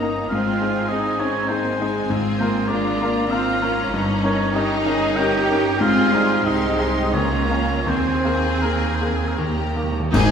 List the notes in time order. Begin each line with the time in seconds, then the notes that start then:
Already playing: G1 G2 A#3 C#4 D#4 A#4 D#5 A#5
0.02 A#3 D#4 A#4
0.29 G#1 G#2 C4 F4 F5 G#5
0.60 C4 D#4 G#4
0.88 C4 D#4 G#4 D#5
1.19 C4 C#4 D#4 G#4 C#5
1.48 A#3 C4 D#4 G#4 C5 G#5
1.79 G#3 C4 D#4 G#4
2.09 G#1 G#2 C4 F4
2.38 A#3 C4 F4 A#4 C5
2.67 G#3 A#3 D4 F4 A#4 D5 A#5
2.97 A#3
3.02 A#3 F4 A#4
3.27 C4 F4 F5
3.32 A#3 F4 A#4
3.60 A#3 C#4 F4 A#4
3.90 G1 G2 D#4
4.23 C#4 D#4 A#4 C#5
4.53 C#4 D#4 G4 A#4 D#5 A#5
4.84 C#4 D#4 G#4 A#4
5.16 C#4 D#4 G4 A#4 G5 A#5
5.48 C#4 A#4
5.52 D#4 A#4
5.80 G#1 G#2 C4 F4 G#4 F5 C6
6.12 G3 C4 D#4 G#4
6.44 C2 G#3 C4 D#4 G4 G#4 D#5 C6
6.77 C4 D#4 G#4 C6
7.06 D#5
7.13 C#2 A#3 C#4 F4 C#5 A#5
7.50 A#3 F4 A#4
7.86 D#2 D#3 C4 G#4 C5 G#5
8.25 A#3 G#4 A#4
8.62 A#3 G#4 A#4
8.95 C5
9.01 A#3 G#4 A#4
9.07 A#4
9.16 G#4
9.28 A#4
9.38 D#2 A#3 G4 A#5
9.49 D#3
9.57 D#3
9.66 D#3
9.75 D#3 A#3 G4 A#4
9.83 D#3
9.91 D#3
10.00 D#3
10.12 G#1 G#2 G#3 C4 D#4 G#4 G#5, concert bass drum, crash